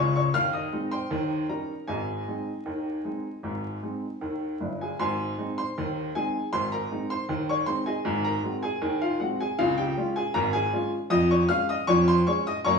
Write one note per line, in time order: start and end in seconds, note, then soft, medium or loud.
0.00 0.27 C#2 medium
0.00 0.27 C#3 medium
0.00 0.15 C#5 medium
0.00 0.14 C#6 medium
0.16 0.34 C#5 medium
0.16 0.35 C#6 medium
0.34 0.67 D#2 medium
0.34 0.67 D#3 medium
0.34 0.53 F5 medium
0.34 0.53 F6 loud
0.53 0.90 D#5 medium
0.53 0.84 D#6 medium
0.73 0.94 G#3 medium
0.73 0.94 C4 medium
0.73 0.94 D#4 medium
0.91 1.46 C5 medium
0.91 1.46 G5 medium
0.91 1.47 C6 medium
1.11 1.44 D#2 medium
1.11 1.44 D#3 medium
1.49 1.71 G3 soft
1.49 1.71 C#4 soft
1.49 1.71 D#4 soft
1.49 1.86 A#4 medium
1.49 1.86 A#5 medium
1.88 2.21 G#1 medium
1.88 2.21 G#2 medium
1.88 4.18 G#4 medium
1.88 4.17 D#5 medium
1.88 4.17 G#5 medium
2.28 2.49 G#3 soft
2.28 2.49 C4 soft
2.28 2.49 D#4 soft
2.66 2.99 D#2 medium
2.66 2.99 D#3 medium
3.05 3.26 G#3 soft
3.05 3.27 C4 soft
3.05 3.27 D#4 soft
3.43 3.76 G#1 medium
3.43 3.77 G#2 medium
3.83 4.04 G#3 soft
3.83 4.04 C4 soft
3.83 4.04 D#4 soft
4.21 4.54 D#2 medium
4.21 4.54 D#3 medium
4.60 4.91 G1 medium
4.60 4.91 G2 medium
4.81 4.99 G#4 soft
4.81 4.99 G#5 medium
4.99 5.32 G#1 medium
4.99 5.32 G#2 medium
4.99 5.53 C5 medium
4.99 5.53 G#5 medium
4.99 5.45 C6 medium
5.38 5.59 G#3 medium
5.38 5.59 C4 soft
5.38 5.60 D#4 medium
5.58 6.11 C5 medium
5.58 6.12 C6 medium
5.78 6.10 D#2 medium
5.78 6.10 D#3 medium
6.15 6.36 G#3 soft
6.15 6.36 C4 soft
6.15 6.37 D#4 medium
6.15 6.51 G#4 medium
6.15 6.45 G#5 medium
6.53 6.85 G#1 medium
6.53 6.85 G#2 medium
6.53 6.71 C5 medium
6.53 6.72 C6 loud
6.72 7.08 A#4 medium
6.72 7.03 A#5 medium
6.91 7.12 G#3 soft
6.91 7.13 C4 soft
6.91 7.13 D#4 medium
7.10 7.46 C5 medium
7.10 7.41 C6 medium
7.29 7.61 D#2 medium
7.29 7.62 D#3 medium
7.49 7.67 C#5 medium
7.49 7.68 C#6 medium
7.66 7.88 G#3 soft
7.66 7.88 C4 soft
7.66 7.89 D#4 medium
7.66 7.86 C5 medium
7.66 7.86 C6 medium
7.86 8.23 G#4 medium
7.86 8.22 D#5 medium
7.86 8.17 G#5 medium
8.05 8.38 G#1 medium
8.05 8.38 G#2 medium
8.24 8.61 A#4 medium
8.24 8.55 A#5 medium
8.43 8.64 G#3 medium
8.43 8.65 C4 medium
8.43 8.65 F#4 medium
8.63 8.99 G#4 medium
8.63 8.99 G#5 medium
8.82 9.14 D#2 medium
8.82 9.14 D#3 medium
9.02 9.20 F4 medium
9.02 9.20 F5 medium
9.20 9.41 G#3 medium
9.20 9.41 C4 medium
9.20 9.39 F#4 medium
9.20 9.39 F#5 medium
9.41 9.58 G#4 medium
9.41 9.59 G#5 medium
9.59 9.91 C#2 medium
9.59 9.91 C#3 loud
9.59 9.77 F4 medium
9.59 9.78 F5 loud
9.78 10.14 G4 medium
9.78 10.08 G5 loud
9.97 10.18 G#3 medium
9.97 10.18 C#4 medium
9.97 10.19 F4 medium
10.16 10.34 G#4 medium
10.16 10.35 G#5 medium
10.34 10.67 G#1 loud
10.34 10.67 G#2 medium
10.34 10.53 A#4 medium
10.34 10.54 A#5 loud
10.53 10.90 G#4 medium
10.53 10.90 G#5 loud
10.73 10.94 G#3 medium
10.73 10.94 C#4 medium
10.73 10.95 F4 medium
11.10 11.43 F2 loud
11.10 11.43 F3 medium
11.10 11.29 D#5 loud
11.10 11.30 D#6 loud
11.31 11.49 C#5 medium
11.31 11.50 C#6 medium
11.49 11.70 G#3 medium
11.49 11.70 C#4 medium
11.49 11.71 G#4 medium
11.49 11.68 F5 medium
11.49 11.68 F6 loud
11.69 11.87 D#5 medium
11.69 11.88 D#6 loud
11.87 12.21 F2 medium
11.87 12.20 F3 medium
11.87 12.06 C#5 medium
11.87 12.07 C#6 loud
12.08 12.26 C5 medium
12.08 12.27 C6 loud
12.27 12.48 G#3 medium
12.27 12.48 C#4 medium
12.27 12.49 G#4 medium
12.27 12.45 C#5 medium
12.27 12.46 C#6 medium
12.47 12.65 D#5 medium
12.47 12.66 D#6 loud
12.65 12.79 F#2 medium
12.65 12.79 A#3 medium
12.65 12.79 C#5 medium
12.65 12.79 A#5 medium
12.65 12.79 C#6 loud